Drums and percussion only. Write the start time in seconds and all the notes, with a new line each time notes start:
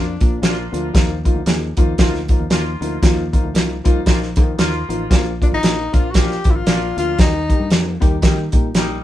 0.21 kick, closed hi-hat
0.43 snare, closed hi-hat
0.74 closed hi-hat
0.95 kick, snare, closed hi-hat
1.25 kick, closed hi-hat
1.46 snare, closed hi-hat
1.77 kick, closed hi-hat
1.98 kick, snare, closed hi-hat
2.15 snare
2.28 kick, closed hi-hat
2.50 snare, closed hi-hat
2.82 closed hi-hat
3.03 kick, snare, closed hi-hat
3.33 kick, closed hi-hat
3.55 snare, closed hi-hat
3.85 kick, closed hi-hat
4.06 kick, snare, closed hi-hat
4.23 snare
4.36 kick, closed hi-hat
4.59 snare, closed hi-hat
4.90 closed hi-hat
5.11 kick, snare, closed hi-hat
5.42 kick, closed hi-hat
5.63 snare, closed hi-hat
5.94 kick, closed hi-hat
6.14 kick, snare, closed hi-hat
6.31 snare
6.44 kick, closed hi-hat
6.67 snare, closed hi-hat
6.98 closed hi-hat
7.19 kick, snare, closed hi-hat
7.50 kick, closed hi-hat
7.70 snare, closed hi-hat
8.02 kick, closed hi-hat
8.22 kick, snare, closed hi-hat
8.52 kick, closed hi-hat
8.75 snare, closed hi-hat